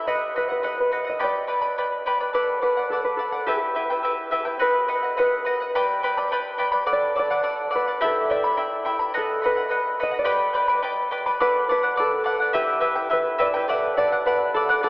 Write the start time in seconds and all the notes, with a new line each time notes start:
Already playing: G4 A4 B4
0.07 B4 D#5 F#5
0.36 B4 D#5 F#5
0.48 B4 D#5 F#5
0.63 B4 D#5 F#5
0.80 B4
0.91 B4 D#5 F#5
1.05 D#5 F#5
1.09 D#5
1.19 G4 B4 D5 G5 B5
1.24 D5
1.47 B4 D5 G5 B5
1.62 B4 D5 B5
1.78 B4 D5 G5 B5
2.06 B4 D5 G5 B5
2.20 B4 D5 B5
2.33 A4 B4 D5 F#5
2.61 A4 B4 D5 F#5
2.77 D5 F#5
2.90 A4 D5 F#5
3.04 B4
3.17 A4 D5 F#5
3.32 D5 F#5
3.46 E4 G4 B4 E5 G5
3.75 E4 B4 E5 G5
3.90 E4 B4 G5
4.03 E4 B4 E5 G5
4.31 E4 B4 E5 G5
4.45 E4 B4 G5
4.59 B4 D#5 F#5
4.88 B4 D#5 F#5
5.03 D#5 F#5
5.17 B4 D#5 F#5
5.45 B4 D#5 F#5
5.60 D#5 F#5
5.75 G4 B4 D5 G5 B5
6.03 B4 D5 G5 B5
6.17 B4 D5 B5
6.32 B4 D5 G5 B5
6.58 B4 D5 G5 B5
6.72 B4 D5 B5
6.86 A4 D5 F#5
6.93 D5
7.15 A4 D5 F#5
7.30 D5 F#5
7.43 A4 D5 F#5
7.70 A4 D5 F#5
7.75 B4
7.88 D5 F#5
8.01 E4 G4 A4 E5 G5 B5
8.30 E4 D5 E5 G5 B5
8.44 E4 E5 B5
8.57 E4 E5 G5 B5
8.85 E4 E5 G5 B5
8.99 E4 E5 B5
9.14 A4 B4 D#5 F#5
9.42 B4 D#5 F#5
9.57 D#5 F#5
9.69 B4 D#5 F#5
9.99 B4 D#5 F#5
10.11 D#5 F#5
10.19 D5
10.24 G4 B4 D5 G5 B5
10.53 B4 D5 G5 B5
10.68 B4 D5 B5
10.82 B4 D5 G5 B5
11.11 B4 D5 G5 B5
11.26 B4 D5 B5
11.40 A4 B4 D5 F#5
11.69 A4 B4 D5 F#5
11.83 D5 F#5
11.96 A4 D5 F#5
12.00 A4
12.24 A4 D5 F#5
12.40 D5 F#5
12.53 E4 G4 B4 E5 G5
12.80 E4 B4 E5 G5
12.95 E4 B4 G5
13.10 E4 B4 E5 G5
13.38 E4 B4 D5 E5 G5
13.54 E4 B4 G5
13.68 A4 D5 E5 F#5
13.97 A4 D5 F#5
14.12 D5 F#5
14.26 A4 B4 D5 F#5
14.54 A4 D5 F#5
14.69 D5 F#5
14.83 A4 D5 F#5